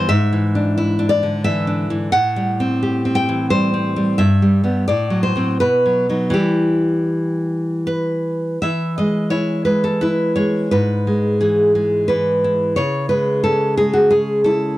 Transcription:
nylon-string guitar
0.09 G#2 E5
0.33 E3
0.55 D4
0.78 E4
0.99 D4
1.09 D5
1.23 D3
1.44 E3 E5
1.67 D4
1.90 E3
2.12 A2 F#5
2.36 G3
2.60 C4
2.83 G4
3.05 C4
3.15 G5
3.29 E3
3.50 G3 C5
3.74 C4
3.96 G3
4.18 G2 E5
4.42 G3
4.64 G3 B3
4.88 A2 D5
5.10 F#3
5.23 C5
5.36 F#3 C4
5.60 B2 B4
5.86 F#3
6.09 F#3 D#4
6.30 E3 G3 E4 G4
7.87 B4
8.62 E3 E5
8.98 G#3 D#5
9.30 E4 C#5
9.65 G#3 B4
9.84 A4
10.01 E4 B4
10.36 G#3 C#5
10.71 G#2 B4
11.07 G#3
11.41 E3 G#4
11.75 G#3
12.08 E3 B4
12.44 E4
12.76 C#3 C#5
13.09 G#3 B4
13.44 C#4 A4
13.77 G#3 G#4
13.93 F#4
14.10 C#4 G#4
14.44 E4 A4

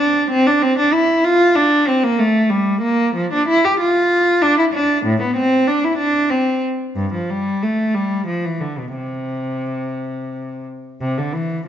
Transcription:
cello
Already playing: D4
0.30 C4
0.47 D4
0.62 C4
0.79 D4
0.93 E4
1.24 F4
1.55 D4
1.88 C4
2.04 A#3
2.19 A3
2.50 G3
2.82 A#3
3.15 F3
3.33 D4
3.48 E4
3.65 G4
3.80 F4
4.42 D4
4.58 E4
4.73 D4
5.05 A2
5.22 B3
5.37 C4
5.68 D4
5.84 E4
5.98 D4
6.30 C4
6.96 G2
7.14 F3
7.30 G3
7.62 A3
7.94 G3
8.27 F3
8.45 E3
8.61 D3
8.78 B2
8.95 C3
11.01 C3
11.18 D3
11.33 E3

